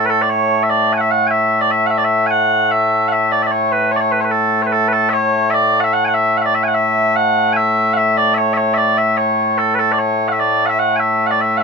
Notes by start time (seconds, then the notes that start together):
Already playing: A2 A3
0.05 B4
0.09 A4
0.22 D5
0.30 C#5
0.63 E5
0.69 D5
0.93 G#5
0.97 E5 F#5
1.11 F#5
1.27 E5 G#5
1.61 D5
1.71 E5
1.86 F#5
1.91 E5
1.98 D5
2.04 E5
2.27 G#5
2.31 F#5
2.71 E5
3.08 F#5
3.12 E5
3.32 D5
3.42 E5
3.46 D5
3.52 C#5
3.72 B4
3.91 C#5
3.96 D5
4.01 C#5
4.11 B4
4.20 B4 C#5
4.31 A4
4.62 C#5
4.66 B4
4.72 A4
4.88 B4
4.92 A4
5.09 C#5 E5
5.50 D5 E5
5.80 E5 F#5
5.93 F#5
6.05 F#5 G#5
6.14 E5
6.37 F#5
6.42 D5 E5
6.55 E5
6.63 G#5
6.68 F#5
6.74 E5
7.16 F#5
7.53 E5 G#5
7.93 E5 F#5
8.17 D5
8.34 C#5 E5
8.53 C#5 E5
8.74 D5 E5
8.98 E5
9.17 C#5
9.58 A4
9.74 B4
9.79 A4
9.92 D5
9.99 C#5
10.28 F#5
10.32 E5
10.39 D5
10.66 E5 F#5
10.79 F#5
10.96 E5 G#5
11.27 F#5
11.31 D5
11.41 E5
11.57 F#5